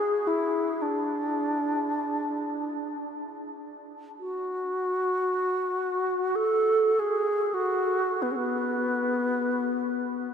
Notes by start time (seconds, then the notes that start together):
Already playing: G#4
0.27 E4
0.82 D4
4.19 F#4
6.36 A4
6.99 G#4
7.54 F#4
8.22 B3
8.32 C#4
8.36 B3